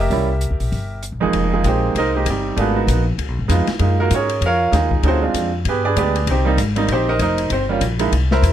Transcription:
Already playing: E5
0.00 G4 A#4
0.10 C2 G3 A#3 C#4 E4, kick, open hi-hat
0.41 closed hi-hat
0.51 C#2
0.60 A#1, open hi-hat
0.72 G1, kick, open hi-hat
1.03 closed hi-hat
1.12 A#1
1.20 G1 F2 G#3 A#3 D#4 G#4
1.33 F1, kick, ride
1.53 G#3 D#4 F4 G#4
1.64 A#1 G#3 A#3 C4 D#4 G4 C5 G5, kick, hi-hat pedal, ride
1.68 G#4
1.95 C2 D#4 A#4 C5 D#5, kick, ride
2.15 G#3 A#3 D#4 G4
2.26 G1 G3, kick, hi-hat pedal, ride
2.30 C4 D#4 G4
2.56 G#1 A3 A#3 D4 F4 F#4 B4, kick, ride
2.61 B3 G#4
2.74 A#3 B3 D#4 F#4
2.87 A#1, kick, hi-hat pedal, ride
3.18 C#2, kick, ride
3.28 B1
3.39 G#1
3.48 F2 G#3 B3 D#4 F4, kick, hi-hat pedal, ride
3.67 muted upright bass stroke, snare, ride
3.79 F#2 G#3 A#3 D#4 F4, kick, ride
4.00 A#3 F4 F#4 A#4
4.11 G#2 C#5, kick, hi-hat pedal, ride
4.15 C#4 G#4 A#4
4.29 ride
4.41 F2, kick, ride
4.46 F4 A#4 C#5 F5
4.72 D#2 G#3 A#3 D#4 F4, kick, snare, hi-hat pedal, ride
4.76 G#3 D#4 G#4
4.91 kick
5.03 D2 A3 C#4 D#4 F#4, kick, ride
5.08 C4 F4 G#4 C5
5.22 G#3 C4 D4 F4
5.34 F2, kick, hi-hat pedal, ride
5.65 G2 G4 G#4 B4, kick, ride
5.69 B3
5.85 D4 G#4 B4 D5
5.96 D2 G#3 B3 D4 G4 G#4 B4 D5, kick, hi-hat pedal, ride
6.15 ride
6.27 C2 D#4 C5, kick, ride
6.31 C4 G4
6.45 G3 A#3 C4 D#4
6.57 G#1, kick, hi-hat pedal, ride
6.76 G3 A#3 C4 D#4, ride
6.88 A#1 C5, kick, ride
6.93 C4 D#4 G4
7.09 D#4 A#4 C5 D#5
7.19 F1 D#4 A#4 C5 D#5, kick, hi-hat pedal, ride
7.38 ride
7.50 G1 C4 C5, kick, ride
7.69 G3 A#3 C#4 F4
7.81 A#1, kick, hi-hat pedal, ride
7.99 G#3 A#3 D#4 E4, ride
8.12 C2, kick, ride
8.31 E4 A#4 C5 E5, snare
8.42 E2, kick, hi-hat pedal, ride

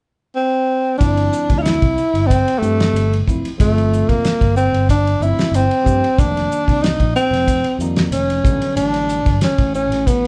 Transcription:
0.35 C4
0.98 G1 F3 A3 C4 D4 E4, kick, hi-hat pedal, ride
1.17 ride
1.33 hi-hat pedal
1.50 D2, kick, ride
1.58 E4 F4
1.65 snare, hi-hat pedal, ride
1.82 C2, kick, ride
1.97 hi-hat pedal
2.14 G1, ride
2.26 C4, kick
2.31 hi-hat pedal, ride
2.48 ride
2.59 G2 F3 A3 C4, hi-hat pedal
2.63 G4
2.80 snare, ride
2.93 G1, hi-hat pedal, ride
3.13 ride
3.27 F1 F3 A3 C4 E4, kick, hi-hat pedal
3.44 muted fingered electric bass stroke, ride
3.58 G1 F3 A3 C4 F4 A4, kick, hi-hat pedal, ride
3.78 ride
3.93 hi-hat pedal
4.09 F1 A#3, kick, ride
4.25 snare, hi-hat pedal, ride
4.41 G1, kick, ride
4.56 C4, hi-hat pedal
4.72 G1, ride
4.89 D4, kick, hi-hat pedal, ride
5.07 ride
5.20 G1 F3 A3 C4 E4, hi-hat pedal
5.39 snare, ride
5.51 G1 C4, hi-hat pedal, ride
5.71 ride
5.83 G2 F3 A3 C4 G4, kick, hi-hat pedal
6.04 ride
6.17 F1 D#3 G3 A#3 D4, kick, hi-hat pedal, ride
6.37 snare, ride
6.51 hi-hat pedal
6.67 C2, kick, ride
6.82 D#4, snare, hi-hat pedal, ride
6.99 A#1, kick, ride
7.16 C4, hi-hat pedal
7.31 F1, snare, ride
7.48 kick, hi-hat pedal, ride
7.64 ride
7.79 F2 D#3 G3 A#3 D#4, hi-hat pedal
7.96 snare, ride
8.11 F1 C#4, hi-hat pedal, ride
8.30 ride
8.43 A1 D3 F#3 G3 B3, kick, hi-hat pedal
8.60 muted fingered electric bass stroke, ride
8.76 A1 D4, hi-hat pedal, ride
8.94 snare, ride
9.09 hi-hat pedal
9.26 G1, kick, ride
9.41 C#4, snare, hi-hat pedal, ride
9.58 A1, kick, ride
9.74 C#4, hi-hat pedal
9.90 A1, snare, ride
10.06 B3, kick, hi-hat pedal, ride

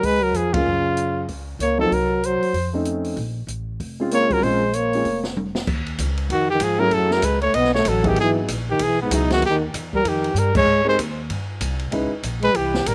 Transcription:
0.03 C#2 G#3 B4, kick, open hi-hat
0.23 F#3 A#4
0.33 F2 F3 G#4, closed hi-hat
0.53 C#3 G#3 A#3 C#4 F4, kick, ride
0.66 F#2
0.97 closed hi-hat
1.28 C#2, kick, open hi-hat
1.59 C#2 A#3 C#5, closed hi-hat
1.78 F3 F#3 A#3 C4 D#4 A4
1.91 C2 F#3 A#4, kick, open hi-hat
2.23 F#3 C5, closed hi-hat
2.42 muted upright bass stroke, open hi-hat
2.53 F2, kick, open hi-hat
2.73 A3 C4 C#4 D#4
2.85 closed hi-hat
3.04 open hi-hat
3.16 A#1, kick, open hi-hat
3.47 A1, closed hi-hat
3.80 F1, kick, open hi-hat
4.00 G#3 C4 C#4 F4
4.11 A#3 C#5, closed hi-hat
4.30 F#3 A#4, kick, open hi-hat
4.42 A#1 G#3 C4 C#4 F4 C5, kick, open hi-hat
4.73 A#3 C#5, closed hi-hat
4.93 G#3 C4 C#4 F4, open hi-hat
5.04 F1, kick, open hi-hat
5.24 snare
5.37 high tom
5.55 snare
5.67 D#2, kick, crash
5.86 ride
5.98 C#2, kick, hi-hat pedal, ride
6.17 ride
6.30 F2 D#3 F#4, kick, ride
6.50 D#3 G4
6.60 G#2 F3 G#4, kick, hi-hat pedal, ride
6.79 F#3 A3 C#4 E4 G#4 A#4
6.91 F#2 F#3 A4, kick, ride
7.11 F#3 A#4, snare
7.22 C#2 G#3 B4, kick, hi-hat pedal, ride
7.41 A3 C#5, ride
7.54 B1 B3 D#5, kick, ride
7.64 snare
7.75 A3 C#5, snare
7.85 A1 F#3 A4, kick, hi-hat pedal, ride
8.04 F#3 B3 D#4 E4 G#4, kick, ride
8.08 D#3 G4
8.16 G#1, kick, ride
8.20 E3 G#4
8.48 A#1, kick, hi-hat pedal, ride
8.69 D#3 G4
8.79 B1 G#4, kick, ride
8.84 E3
9.02 G#2 B3
9.10 C#2 F#3 B3 D#4 E4 G#4, kick, hi-hat pedal, ride
9.15 B2
9.30 D#3 F#4, snare, ride
9.42 D#2 G4, kick, ride
9.48 D#3
9.74 E2, kick, hi-hat pedal, ride
9.93 G3 A#4, kick
10.05 F2 D#3 G4, kick, ride
10.24 ride
10.34 G2 G3, hi-hat pedal
10.39 A#4
10.55 G#3 C#5, kick, crash
10.66 G#2
10.84 G#3 C4 D#4 G4 A#4
10.89 C5
10.98 D#2, kick, hi-hat pedal, ride
11.30 G2, kick, ride
11.61 C2, kick, hi-hat pedal, ride
11.79 ride
11.91 C#2 G#3 C#4 D#4 E4 B4, kick, ride
12.23 A#1, kick, hi-hat pedal, ride
12.42 G#3 B4, ride
12.54 C2 E3 G4, kick, ride
12.74 snare
12.86 A1 G3 A#4, kick, hi-hat pedal, ride

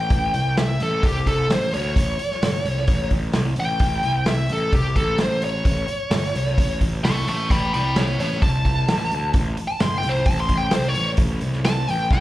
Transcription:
Already playing: G5
0.10 A1, kick, open hi-hat
0.34 C2, open hi-hat
0.57 E5, snare, open hi-hat
0.80 A1 A4, open hi-hat
1.03 C2 G4, kick, open hi-hat
1.26 A4, kick, open hi-hat
1.50 A1 C5, snare, open hi-hat
1.73 D2 C#5, open hi-hat
1.96 A1, kick, open hi-hat
2.19 muted picked electric bass stroke, open hi-hat
2.31 snare
2.43 G1, snare, open hi-hat
2.65 C2, open hi-hat
2.77 snare
2.87 A1, kick, open hi-hat
3.11 A1, kick, open hi-hat
3.33 C2, snare, open hi-hat
3.56 A1, open hi-hat
3.60 G5
3.79 A1, kick, open hi-hat
4.03 C2, open hi-hat
4.26 E5, snare, open hi-hat
4.49 A1 A4, open hi-hat
4.73 C2 G4, kick, open hi-hat
4.96 A1 A4, kick, open hi-hat
5.18 snare, open hi-hat
5.22 C5
5.42 C#5, open hi-hat
5.65 A1, kick, open hi-hat
5.88 muted picked electric bass stroke, open hi-hat
6.10 G1, snare, open hi-hat
6.35 C2, open hi-hat
6.47 snare
6.58 A1, kick, open hi-hat
6.81 A1, kick, open hi-hat
7.04 C2 A5 C#6, snare, open hi-hat
7.27 A1 A5 C#6, open hi-hat
7.50 A1 G5 B5, kick, open hi-hat
7.73 C2 G5 B5, open hi-hat
7.96 C#5 A5, snare, open hi-hat
8.19 A1 C#5 A5, open hi-hat
8.32 snare
8.42 C2 A5, kick, open hi-hat
8.65 kick, open hi-hat
8.88 A1, snare, open hi-hat
9.11 D2, open hi-hat
9.34 A1, kick, open hi-hat
9.57 muted picked electric bass stroke, open hi-hat
9.68 A5
9.80 G1 C6, snare, open hi-hat
9.98 G5
10.03 C2, open hi-hat
10.09 C5
10.15 snare
10.26 A1 A5, kick, open hi-hat
10.40 C6
10.49 A1, kick, open hi-hat
10.58 G5
10.71 C2 C5, snare, open hi-hat
10.88 C#5
10.94 A1, open hi-hat
11.17 A1, kick, open hi-hat
11.41 C2, open hi-hat
11.53 snare
11.64 A5, snare, open hi-hat
11.88 A1 G5, open hi-hat
12.11 C2 G5, kick, snare

